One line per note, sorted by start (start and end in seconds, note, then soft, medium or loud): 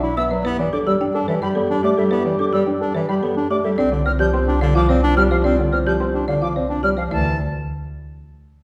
0.00 0.30 B1 medium
0.00 0.27 D4 medium
0.00 0.21 D4 medium
0.00 0.13 E4 medium
0.17 0.28 B3 medium
0.17 0.35 B4 medium
0.17 0.35 E5 medium
0.17 0.23 E6 medium
0.31 0.41 F#3 medium
0.31 0.49 B4 medium
0.31 0.49 D5 medium
0.44 3.63 G2 medium
0.44 0.55 B3 loud
0.44 0.63 E4 medium
0.44 3.60 G4 medium
0.44 0.63 B4 loud
0.59 0.69 E3 medium
0.59 0.77 D5 medium
0.73 0.91 D4 medium
0.73 0.91 A4 medium
0.73 0.79 D6 medium
0.87 0.97 G3 medium
0.87 1.05 G4 medium
0.87 1.05 D5 medium
0.87 0.93 E6 medium
1.01 1.19 D4 medium
1.01 1.19 G5 medium
1.14 1.25 D4 medium
1.14 1.32 A4 medium
1.28 1.39 E3 medium
1.28 1.46 B4 medium
1.28 1.46 D5 medium
1.28 1.34 E5 medium
1.42 1.52 G3 medium
1.42 1.60 G4 medium
1.42 1.60 D5 medium
1.42 1.48 B5 medium
1.55 1.66 B3 medium
1.55 1.74 A4 medium
1.55 1.74 D5 medium
1.70 1.80 D4 medium
1.70 1.88 D4 medium
1.83 1.94 A3 medium
1.83 2.02 G4 medium
1.83 2.02 D5 medium
1.83 1.90 D6 medium
1.97 2.08 G3 medium
1.97 2.16 A4 medium
1.97 2.04 E5 medium
2.11 2.22 B3 medium
2.11 2.30 E4 medium
2.11 2.29 B4 medium
2.26 2.36 E3 medium
2.26 2.44 D5 medium
2.39 2.57 D4 medium
2.39 2.57 A4 medium
2.39 2.46 D6 medium
2.53 2.64 G3 medium
2.53 2.71 G4 medium
2.53 2.71 D5 medium
2.53 2.59 E6 medium
2.66 2.85 D4 medium
2.66 2.85 G5 medium
2.81 2.91 D4 medium
2.81 2.99 A4 medium
2.95 3.05 E3 medium
2.95 3.13 B4 medium
2.95 3.13 D5 medium
2.95 3.01 E5 medium
3.09 3.19 G3 medium
3.09 3.27 G4 medium
3.09 3.27 D5 medium
3.09 3.15 B5 medium
3.23 3.33 B3 medium
3.23 3.41 A4 medium
3.23 3.41 D5 medium
3.36 3.47 D4 medium
3.36 3.55 D4 medium
3.50 3.61 A3 medium
3.50 3.69 G4 medium
3.50 3.69 D5 medium
3.50 3.56 D6 medium
3.64 3.75 G3 medium
3.64 3.82 A4 medium
3.64 3.70 E5 medium
3.78 6.96 C2 medium
3.78 3.89 C4 medium
3.78 3.96 D4 medium
3.78 6.93 F4 medium
3.78 3.96 D5 medium
3.92 4.03 D3 medium
3.92 4.10 D5 medium
4.06 4.24 C4 medium
4.06 4.24 C5 medium
4.06 4.12 F6 medium
4.19 4.30 F3 medium
4.19 4.38 G4 medium
4.19 4.38 D5 medium
4.19 4.26 G6 medium
4.33 4.52 C4 medium
4.33 4.52 C6 medium
4.47 4.58 D4 medium
4.47 4.66 G4 medium
4.61 4.72 D3 medium
4.61 4.80 D5 medium
4.61 4.67 F5 medium
4.75 4.86 F3 medium
4.75 4.94 F4 loud
4.75 4.93 F5 medium
4.75 4.81 D6 loud
4.89 5.00 C4 medium
4.89 5.07 C5 medium
4.89 5.07 D5 medium
5.03 5.21 C4 medium
5.03 5.14 D4 loud
5.17 5.27 G3 medium
5.17 5.35 G4 medium
5.17 5.35 D5 loud
5.17 5.23 F6 medium
5.31 5.41 F3 medium
5.31 5.49 G4 medium
5.31 5.49 C5 medium
5.31 5.37 F5 medium
5.44 5.55 C4 medium
5.44 5.63 D4 medium
5.44 5.63 D5 medium
5.59 5.69 D3 medium
5.59 5.77 D5 medium
5.72 5.91 C4 medium
5.72 5.91 C5 medium
5.72 5.79 F6 medium
5.86 5.97 F3 medium
5.86 6.05 G4 medium
5.86 6.05 D5 medium
5.86 5.93 G6 medium
6.00 6.18 C4 medium
6.00 6.18 C6 medium
6.14 6.25 D4 medium
6.14 6.32 G4 medium
6.28 6.39 D3 medium
6.28 6.46 D5 medium
6.28 6.34 F5 medium
6.41 6.52 F3 medium
6.41 6.60 F4 medium
6.41 6.60 F5 medium
6.41 6.48 D6 medium
6.56 6.66 C4 medium
6.56 6.74 C5 medium
6.56 6.74 D5 medium
6.70 6.88 C4 medium
6.70 6.80 D4 medium
6.83 6.94 G3 medium
6.83 7.02 G4 medium
6.83 7.02 D5 medium
6.83 6.90 F6 medium
6.97 7.08 F3 medium
6.97 7.16 G4 medium
6.97 7.15 C5 medium
6.97 7.03 F5 medium
7.11 7.37 D2 medium
7.11 7.37 E3 medium
7.11 7.37 E4 medium
7.11 7.37 D5 medium
7.11 7.37 A5 medium